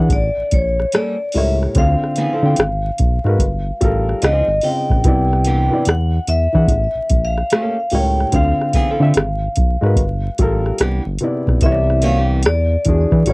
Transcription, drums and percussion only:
0.09 kick, closed hi-hat
0.51 kick, closed hi-hat
0.80 cross-stick
0.92 cross-stick, closed hi-hat
1.32 open hi-hat
1.63 cross-stick
1.75 kick, closed hi-hat
2.04 cross-stick
2.16 closed hi-hat
2.56 cross-stick, closed hi-hat
2.98 kick, closed hi-hat
3.26 cross-stick
3.38 kick, closed hi-hat
3.81 kick, closed hi-hat
4.09 cross-stick
4.22 cross-stick, closed hi-hat
4.61 open hi-hat
4.90 kick, cross-stick
5.04 kick, closed hi-hat
5.33 cross-stick
5.44 closed hi-hat
5.85 cross-stick, closed hi-hat
6.27 closed hi-hat
6.54 kick, cross-stick
6.67 kick, closed hi-hat
7.10 kick, closed hi-hat
7.38 cross-stick
7.50 cross-stick, closed hi-hat
7.90 open hi-hat
8.20 cross-stick
8.32 kick, closed hi-hat
8.61 cross-stick
8.73 kick, closed hi-hat
9.14 cross-stick, closed hi-hat
9.56 kick, closed hi-hat
9.84 cross-stick
9.96 kick, closed hi-hat
10.38 kick, closed hi-hat
10.66 cross-stick
10.78 cross-stick, closed hi-hat
11.18 closed hi-hat
11.47 kick, cross-stick
11.61 kick, closed hi-hat
11.90 cross-stick
12.02 closed hi-hat
12.43 cross-stick, closed hi-hat
12.85 kick, closed hi-hat
13.11 kick, cross-stick
13.26 closed hi-hat

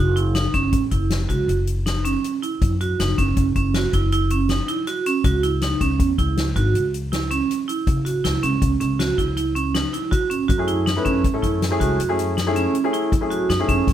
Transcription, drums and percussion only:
0.16 closed hi-hat
0.35 snare, closed hi-hat
0.54 kick, snare, closed hi-hat
0.72 kick, closed hi-hat
0.91 kick, closed hi-hat
1.10 snare, closed hi-hat
1.29 kick, closed hi-hat
1.49 closed hi-hat
1.67 closed hi-hat
1.86 snare, closed hi-hat
2.05 closed hi-hat
2.24 closed hi-hat
2.43 closed hi-hat
2.61 kick, closed hi-hat
2.81 closed hi-hat
3.00 snare, closed hi-hat
3.18 kick, closed hi-hat
3.37 kick, closed hi-hat
3.56 kick, closed hi-hat
3.74 snare, closed hi-hat
3.93 kick, closed hi-hat
4.12 closed hi-hat
4.30 closed hi-hat
4.49 snare, closed hi-hat
4.68 closed hi-hat
4.87 snare, closed hi-hat
5.06 snare, closed hi-hat
5.24 kick, closed hi-hat
5.43 snare, closed hi-hat
5.61 snare, closed hi-hat
5.81 kick, closed hi-hat
6.00 kick, closed hi-hat
6.18 kick, closed hi-hat
6.37 snare, closed hi-hat
6.56 kick, closed hi-hat
6.75 closed hi-hat
6.94 closed hi-hat
7.13 snare, closed hi-hat
7.31 closed hi-hat
7.51 snare, closed hi-hat
7.69 closed hi-hat
7.87 kick, closed hi-hat
8.06 snare, closed hi-hat
8.25 snare, closed hi-hat
8.43 closed hi-hat
8.62 kick, closed hi-hat
8.80 snare, closed hi-hat
9.00 snare, closed hi-hat
9.18 kick, closed hi-hat
9.37 closed hi-hat
9.56 closed hi-hat
9.74 snare, closed hi-hat
9.94 closed hi-hat
10.12 kick, closed hi-hat
10.31 closed hi-hat
10.49 kick, closed hi-hat
10.68 closed hi-hat
10.87 snare, closed hi-hat
11.05 kick, closed hi-hat
11.24 kick, closed hi-hat
11.43 kick, closed hi-hat
11.62 snare, closed hi-hat
11.81 kick, closed hi-hat
12.00 closed hi-hat
12.19 snare, closed hi-hat
12.38 snare, closed hi-hat
12.56 snare, closed hi-hat
12.75 closed hi-hat
12.94 closed hi-hat
13.12 kick, closed hi-hat
13.31 closed hi-hat
13.50 snare, closed hi-hat
13.69 kick, closed hi-hat
13.87 kick, snare, closed hi-hat

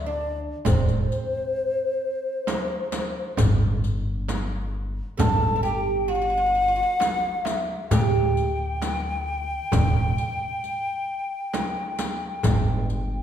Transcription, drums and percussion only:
0.21 darbuka ka
0.65 riq, frame drum, darbuka dum
0.89 riq, darbuka ka
1.12 riq, darbuka ka
2.47 riq, darbuka tek, frame drum
2.92 riq, darbuka tek, frame drum
3.37 riq, frame drum, darbuka dum
3.84 riq
4.29 riq, darbuka tek, frame drum
4.74 darbuka ka
5.19 riq, darbuka dum, frame drum
5.42 darbuka ka
5.65 riq, darbuka ka
7.00 riq, darbuka tek, frame drum
7.45 riq, darbuka tek, frame drum
7.91 riq, frame drum, darbuka dum
8.35 riq, darbuka ka
8.82 riq, darbuka tek, frame drum
9.27 darbuka ka
9.72 riq, darbuka dum, frame drum
9.95 darbuka ka
10.18 riq, darbuka ka
10.63 riq, darbuka ka
11.53 riq, darbuka tek, frame drum
11.99 riq, darbuka tek, frame drum
12.43 riq, darbuka dum, frame drum
12.90 riq, darbuka ka

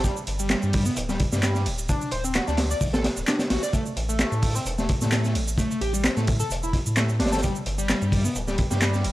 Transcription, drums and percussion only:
0.04 kick, closed hi-hat, shaker
0.17 shaker
0.27 closed hi-hat, ride
0.39 shaker
0.50 snare, clap, closed hi-hat, shaker
0.62 shaker
0.73 kick, open hi-hat, ride
0.86 shaker
0.96 closed hi-hat, shaker
1.09 snare, shaker
1.20 kick, closed hi-hat, ride
1.32 snare, shaker
1.43 snare, clap, closed hi-hat, shaker
1.55 snare, shaker
1.66 closed hi-hat, ride
1.78 shaker
1.89 kick, closed hi-hat, shaker
2.01 shaker
2.11 closed hi-hat, ride
2.25 shaker
2.35 snare, clap, closed hi-hat, shaker
2.48 snare, shaker
2.57 snare, closed hi-hat, ride
2.71 shaker
2.81 kick, open hi-hat, shaker
2.94 snare, closed hi-hat, shaker
3.04 snare, closed hi-hat, ride
3.17 shaker
3.27 snare, clap, closed hi-hat, shaker
3.39 snare, closed hi-hat, shaker
3.50 snare, closed hi-hat, ride
3.62 snare, shaker
3.73 kick, closed hi-hat, shaker
3.86 shaker
3.97 closed hi-hat, ride
4.09 shaker
4.19 snare, clap, closed hi-hat, shaker
4.32 shaker
4.42 kick, open hi-hat, ride
4.55 shaker
4.66 closed hi-hat, shaker
4.78 snare, shaker
4.89 kick, closed hi-hat, ride
5.01 snare, shaker
5.12 snare, clap, closed hi-hat, shaker
5.24 snare, shaker
5.35 closed hi-hat, ride
5.48 shaker
5.58 kick, closed hi-hat, shaker
5.71 shaker
5.81 closed hi-hat, ride
5.94 shaker
6.04 snare, clap, closed hi-hat, shaker
6.17 snare, shaker
6.27 kick, closed hi-hat, ride
6.40 shaker
6.51 closed hi-hat, shaker
6.63 shaker
6.73 kick, closed hi-hat, ride
6.86 shaker
6.97 snare, clap, closed hi-hat, shaker
7.09 shaker
7.19 snare, closed hi-hat, ride
7.26 snare, closed hi-hat
7.32 snare, closed hi-hat, shaker
7.37 snare, closed hi-hat
7.43 kick, closed hi-hat, shaker
7.56 shaker
7.66 closed hi-hat, ride
7.79 shaker
7.89 snare, clap, closed hi-hat, shaker
8.02 shaker
8.12 kick, open hi-hat, ride
8.25 shaker
8.36 closed hi-hat, shaker
8.48 snare, shaker
8.58 kick, closed hi-hat, ride
8.71 snare, shaker
8.82 snare, clap, closed hi-hat, shaker
8.94 snare, shaker
9.04 closed hi-hat, ride

